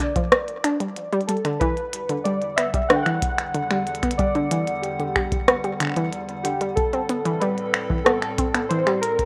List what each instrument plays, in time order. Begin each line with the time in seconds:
Already playing: synth keys D5
0.00 synth arpeggio sound D3, finger snap, kick, closed hi-hat
0.16 synth arpeggio sound F3, kick, closed hi-hat
0.32 cross-stick, closed hi-hat
0.48 closed hi-hat
0.64 synth arpeggio sound D4, finger snap, closed hi-hat
0.80 synth arpeggio sound G3, closed hi-hat
0.96 closed hi-hat
1.13 synth arpeggio sound G3, closed hi-hat
1.21 closed hi-hat
1.27 synth arpeggio sound G3, synth keys A4, closed hi-hat
1.37 closed hi-hat
1.45 synth arpeggio sound D3, finger snap, closed hi-hat
1.60 ambient pad E2 D3 G3 F#5, synth arpeggio sound E3, synth keys B4, kick, closed hi-hat
1.77 closed hi-hat
1.93 closed hi-hat
2.09 synth arpeggio sound D3, closed hi-hat
2.24 synth arpeggio sound G3, synth keys D5, closed hi-hat
2.42 closed hi-hat
2.56 synth arpeggio sound B3, synth keys E5, finger snap, closed hi-hat
2.74 synth arpeggio sound G3, kick, closed hi-hat
2.89 synth arpeggio sound D3, synth keys F#5, cross-stick, closed hi-hat
2.96 synth keys G5
3.03 synth arpeggio sound E3, synth keys F#5, finger snap, closed hi-hat
3.22 kick, closed hi-hat
3.38 finger snap, closed hi-hat
3.55 synth arpeggio sound D3, closed hi-hat
3.71 synth arpeggio sound G3, finger snap, closed hi-hat
3.87 closed hi-hat
3.95 closed hi-hat
4.03 synth arpeggio sound B3, finger snap, kick, closed hi-hat
4.11 closed hi-hat
4.18 synth arpeggio sound G3, synth keys D5, kick, closed hi-hat
4.35 synth arpeggio sound D3, closed hi-hat
4.51 synth arpeggio sound E3, closed hi-hat
4.67 closed hi-hat
4.82 synth keys G4, closed hi-hat
5.00 synth arpeggio sound D3, closed hi-hat
5.16 synth arpeggio sound G3, finger snap, kick
5.32 kick, closed hi-hat
5.48 synth arpeggio sound B3, cross-stick, closed hi-hat
5.64 synth arpeggio sound G3, closed hi-hat
5.80 synth arpeggio sound D3, finger snap, closed hi-hat
5.83 finger snap
5.85 finger snap
5.87 finger snap
5.90 finger snap
5.92 finger snap
5.94 synth arpeggio sound E3, finger snap, closed hi-hat
6.13 closed hi-hat
6.29 closed hi-hat
6.43 synth arpeggio sound D3, synth keys G4, closed hi-hat
6.61 synth arpeggio sound G3, closed hi-hat
6.76 ambient pad A2 C4 A4, synth keys A4, kick, closed hi-hat
6.93 synth arpeggio sound C4, closed hi-hat
7.09 synth arpeggio sound B3, closed hi-hat
7.25 synth arpeggio sound E3, closed hi-hat
7.40 synth arpeggio sound G3, synth keys B4, closed hi-hat
7.58 closed hi-hat
7.74 finger snap
7.90 synth arpeggio sound E3, kick
8.05 synth arpeggio sound B3, synth keys A4, cross-stick, closed hi-hat
8.22 finger snap, closed hi-hat
8.38 synth arpeggio sound C4, kick, closed hi-hat
8.54 synth arpeggio sound B3, finger snap, closed hi-hat
8.69 synth arpeggio sound E3, synth keys C5, closed hi-hat
8.87 synth arpeggio sound G3, finger snap, closed hi-hat
9.01 ambient pad G2 F3 A#3 A5, synth keys A#4, closed hi-hat
9.19 finger snap, kick, closed hi-hat